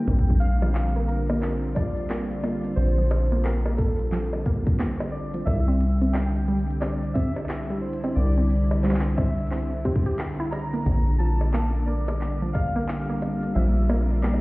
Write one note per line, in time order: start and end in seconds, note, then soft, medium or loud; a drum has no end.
0.00 5.46 D3 medium
0.00 10.86 G3 medium
0.00 10.86 C4 medium
0.00 0.37 G5 loud
0.08 2.75 A#1 medium
0.08 0.14 A#3 medium
0.08 kick medium
0.08 closed hi-hat medium
0.19 kick medium
0.28 kick medium
0.28 closed hi-hat soft
0.40 1.10 F5 loud
0.40 closed hi-hat loud
0.62 0.69 F3 medium
0.62 closed hi-hat medium
0.62 high bongo medium
0.75 5.47 F4 medium
0.75 clap loud
0.75 closed hi-hat medium
0.96 1.06 A#3 medium
0.96 closed hi-hat soft
1.07 1.77 A#4 medium
1.07 closed hi-hat loud
1.30 1.34 A#3 medium
1.30 closed hi-hat soft
1.30 high bongo medium
1.31 closed hi-hat soft
1.36 closed hi-hat soft
1.38 closed hi-hat soft
1.40 clap medium
1.40 closed hi-hat soft
1.42 closed hi-hat medium
1.63 closed hi-hat soft
1.75 1.87 F3 medium
1.75 2.80 D5 loud
1.75 kick medium
1.75 closed hi-hat loud
1.75 high bongo medium
1.97 closed hi-hat medium
2.10 2.26 A#3 medium
2.10 clap loud
2.10 closed hi-hat medium
2.31 closed hi-hat soft
2.44 2.50 A#3 medium
2.44 closed hi-hat medium
2.44 high bongo medium
2.64 closed hi-hat medium
2.76 5.44 A#1 medium
2.76 3.46 C5 loud
2.76 closed hi-hat medium
2.98 3.05 F3 medium
2.98 closed hi-hat soft
3.11 closed hi-hat loud
3.11 high bongo medium
3.32 3.42 A#3 medium
3.32 closed hi-hat medium
3.43 3.79 A#4 medium
3.43 clap loud
3.43 closed hi-hat medium
3.66 3.70 A#3 medium
3.66 closed hi-hat soft
3.66 high bongo medium
3.77 4.41 A4 medium
3.77 kick medium
3.77 closed hi-hat loud
3.99 closed hi-hat medium
4.12 4.23 F3 medium
4.12 clap medium
4.12 closed hi-hat medium
4.33 closed hi-hat soft
4.33 high bongo medium
4.46 4.62 A#3 medium
4.46 kick medium
4.46 closed hi-hat loud
4.67 kick loud
4.67 closed hi-hat medium
4.79 4.86 A#3 medium
4.79 clap loud
4.79 closed hi-hat medium
5.00 closed hi-hat soft
5.00 high bongo medium
5.12 5.44 D5 loud
5.34 5.41 F3 medium
5.34 closed hi-hat medium
5.45 8.14 C2 medium
5.45 14.41 D3 medium
5.45 6.16 E5 loud
5.45 kick medium
5.45 closed hi-hat medium
5.45 high bongo soft
5.68 5.78 C4 medium
5.68 closed hi-hat soft
5.81 closed hi-hat loud
6.02 6.06 C4 medium
6.02 closed hi-hat medium
6.13 6.77 G5 loud
6.13 clap loud
6.13 closed hi-hat medium
6.13 high bongo soft
6.35 closed hi-hat soft
6.48 6.59 G3 medium
6.48 10.86 E4 medium
6.48 closed hi-hat soft
6.59 closed hi-hat medium
6.71 closed hi-hat medium
6.80 6.98 C4 medium
6.80 7.16 D5 loud
6.80 clap medium
6.80 closed hi-hat medium
6.80 high bongo medium
6.93 closed hi-hat soft
7.03 closed hi-hat soft
7.04 closed hi-hat soft
7.14 7.22 C4 medium
7.14 7.78 E5 loud
7.14 kick medium
7.14 closed hi-hat loud
7.36 closed hi-hat soft
7.36 high bongo soft
7.38 high bongo soft
7.45 high bongo soft
7.49 clap loud
7.49 closed hi-hat medium
7.70 7.77 G3 medium
7.70 closed hi-hat soft
7.81 8.17 C5 medium
7.93 closed hi-hat medium
8.04 8.14 C4 medium
8.04 closed hi-hat medium
8.04 high bongo medium
8.15 10.84 C2 medium
8.15 8.85 D5 loud
8.15 closed hi-hat medium
8.37 8.41 C4 medium
8.37 closed hi-hat soft
8.50 closed hi-hat medium
8.71 closed hi-hat medium
8.71 high bongo medium
8.83 8.95 G3 medium
8.83 9.18 C5 medium
8.83 clap medium
8.83 closed hi-hat medium
8.89 clap medium
8.94 clap medium
9.00 clap loud
9.05 closed hi-hat soft
9.16 9.34 C4 medium
9.16 9.80 E5 medium
9.16 kick medium
9.16 high bongo medium
9.39 closed hi-hat soft
9.40 closed hi-hat soft
9.47 closed hi-hat soft
9.51 9.58 C4 medium
9.51 clap medium
9.51 closed hi-hat medium
9.58 closed hi-hat soft
9.63 closed hi-hat soft
9.72 closed hi-hat soft
9.74 closed hi-hat soft
9.81 closed hi-hat soft
9.85 10.02 C4 medium
9.85 kick medium
9.85 closed hi-hat medium
9.85 high bongo medium
9.92 kick loud
9.92 closed hi-hat soft
9.96 closed hi-hat soft
10.06 10.16 G4 medium
10.06 closed hi-hat medium
10.19 clap loud
10.29 closed hi-hat medium
10.40 10.50 E4 loud
10.40 closed hi-hat soft
10.51 11.21 A#5 loud
10.51 closed hi-hat medium
10.51 high bongo medium
10.73 10.80 A#3 medium
10.73 closed hi-hat soft
10.75 closed hi-hat soft
10.82 closed hi-hat soft
10.86 13.53 A#1 medium
10.86 14.41 A#3 medium
10.86 14.41 D5 medium
10.86 kick medium
10.86 closed hi-hat soft
10.93 closed hi-hat soft
10.97 closed hi-hat soft
11.07 closed hi-hat soft
11.18 11.31 F3 medium
11.18 11.83 A5 loud
11.18 closed hi-hat medium
11.41 closed hi-hat soft
11.41 high bongo soft
11.54 11.60 A#3 medium
11.54 clap loud
11.54 closed hi-hat soft
11.74 14.41 G3 medium
11.74 closed hi-hat soft
11.86 11.94 A#3 medium
11.86 12.56 D5 medium
12.08 closed hi-hat medium
12.08 high bongo medium
12.21 clap medium
12.21 closed hi-hat medium
12.42 12.49 F3 medium
12.42 closed hi-hat soft
12.53 13.58 F5 loud
12.53 kick medium
12.53 closed hi-hat medium
12.53 high bongo medium
12.75 12.80 A#3 loud
12.75 14.41 C4 medium
12.88 clap loud
12.88 closed hi-hat medium
12.97 14.41 F4 medium
13.09 13.13 A#3 medium
13.09 closed hi-hat soft
13.22 closed hi-hat medium
13.22 high bongo soft
13.43 closed hi-hat medium
13.54 14.41 A#1 medium
13.54 13.67 F3 medium
13.54 14.25 E5 loud
13.54 closed hi-hat soft
13.77 closed hi-hat soft
13.90 13.96 A#3 loud
13.90 closed hi-hat medium
13.90 high bongo medium
14.10 closed hi-hat soft
14.22 14.30 A#3 medium
14.22 14.36 D5 medium
14.22 clap loud
14.22 closed hi-hat soft
14.34 high bongo medium